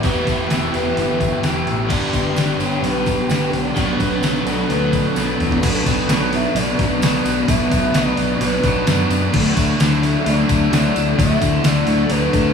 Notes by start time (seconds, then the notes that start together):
Already playing: G4 E5
0.03 E1 E2 B2 E3 B3 E4 G4 B4 C#6, kick, open hi-hat, tambourine
0.27 E1, kick, open hi-hat, tambourine
0.49 E1 E3 B3 E4 G4, snare, open hi-hat, tambourine
0.73 E1 E3 B3 E4 G4 B4, open hi-hat, tambourine
0.96 G1 E3 B3 E4 G4, open hi-hat, tambourine
1.20 kick, open hi-hat, tambourine
1.42 E1 E3 B3 E4, snare, open hi-hat, tambourine
1.47 G4
1.67 A1, open hi-hat
1.88 G1 G2 D3 G3 B3 D4 G4 D5 F#5 B5, kick, tambourine, crash
1.93 G4
2.13 G1, kick, open hi-hat, tambourine
2.27 snare
2.34 G1 G3 B3 D4 G4 D5, snare, open hi-hat, tambourine
2.58 G1 B3 D4 G4 C#5, open hi-hat, tambourine
2.62 G3
2.82 B1 G3 B3 D4 G4 B4, open hi-hat, tambourine
3.06 kick, open hi-hat, tambourine
3.27 G1 G3 B3 D4 B4, open hi-hat, tambourine
3.31 G4, snare
3.50 B1 D5, open hi-hat
3.76 B1 B2 F#3 B3 D4 F#4 A4 D5 B5, kick, open hi-hat, tambourine
3.98 B1 B4, kick, open hi-hat, tambourine
4.22 B1 F#3 B3 D4 F#4, snare, open hi-hat, tambourine
4.45 B1 B2 F#3 B3 D4 F#4 D5, open hi-hat, tambourine
4.68 D2 B2 F#3 B3 B4, open hi-hat, tambourine
4.72 D4 F#4
4.93 kick, open hi-hat, tambourine
5.15 B1 B2 F#3 B3 D4 F#4, snare, open hi-hat, tambourine
5.40 E2, mid tom, open hi-hat
5.52 floor tom
5.62 B1 B2 F#3 B3 D4 F#4 D5 B5, kick, open hi-hat, crash, tambourine
5.86 B1 F#3 B3 D4, kick, open hi-hat, tambourine
5.99 snare
6.09 B1 B2 F#3 B3 D4, snare, open hi-hat, tambourine
6.32 F#3 B3 D4 E5, open hi-hat, tambourine
6.55 B1 B2 F#3 B3 D4 D5, open hi-hat, tambourine
6.78 B1 F#3 B3 D4, kick, open hi-hat
7.00 B1 B2 F#3 B3 D4 D5, snare, open hi-hat, tambourine
7.24 B1 F#3 B3 D4, open hi-hat, tambourine
7.47 B1 B2 F#3 B3 D4 E5, kick, open hi-hat, tambourine
7.71 B1 F#3 B3 D4, kick, open hi-hat, tambourine
7.94 B1 B2 F#3 B3 D4 D5, snare, open hi-hat, tambourine
8.16 B1 F#3 B3 D4, open hi-hat, tambourine
8.40 B1 B2 F#3 B3 D4 B4, open hi-hat, tambourine
8.63 B1 F#3 B3 D4, kick, open hi-hat, tambourine
8.87 F#2 B2 F#3 B3 D4, snare, open hi-hat, tambourine
9.09 F#2 F#3 B3 D4, open hi-hat, tambourine
9.33 D2 D3 F#3 A3 D4 E4 F#5, kick, crash, tambourine
9.56 D2 F#3 A3 D4, kick, open hi-hat, tambourine
9.70 snare
9.79 D2 D3 F#3 A3 D4, snare, open hi-hat, tambourine
10.02 F#3 A3 D4 E5, open hi-hat, tambourine
10.26 D2 D3 F#3 A3 D4 D5, open hi-hat, tambourine
10.48 D2 F#3 A3 D4, kick, open hi-hat, tambourine
10.71 D2 D3 F#3 A3 D4 D5, snare, open hi-hat, tambourine
10.95 D2 F#3 A3 D4, open hi-hat, tambourine
11.18 D2 D3 F#3 A3 D4 E5, kick, open hi-hat, tambourine
11.40 D2 F#3 A3 D4, kick, open hi-hat, tambourine
11.64 D2 D3 F#3 A3 D4 D5, snare, open hi-hat, tambourine
11.87 D2 F#3 A3 D4, open hi-hat, tambourine
12.10 D2 D3 F#3 A3 D4 B4, open hi-hat, tambourine
12.33 D2 F#3 A3 D4, kick, open hi-hat, tambourine